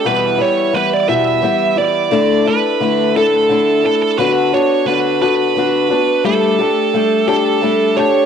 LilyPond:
<<
  \new Staff \with { instrumentName = "Lead electric guitar" } { \time 6/8 \key e \dorian \tempo 4. = 58 b'8 cis''8 b'16 d''16 e''4 d''8~ | d''8 b'4 a'4 a'16 a'16 | b'8 cis''8 b'8 b'4. | a'4. a'4 cis''8 | }
  \new Staff \with { instrumentName = "Steel-string acoustic guitar" } { \time 6/8 \key e \dorian <e, b, e g b e'>8 <e g b e'>8 <e g b e'>8 <e, b, e g b e'>8 <e g b e'>8 <e g b e'>8 | <d a d' e'>8 <a d' e'>8 <d a d' e'>8 <d a d' e'>8 <d a d' e'>8 <a d' e'>8 | <d b d' fis'>8 <b d' fis'>8 <d b d' fis'>8 <d b d' fis'>8 <d b d' fis'>8 <b d' fis'>8 | <g a d' g'>8 <a d' g'>8 <g a d' g'>8 <g a d' g'>8 <g a d' g'>8 <a d' g'>8 | }
>>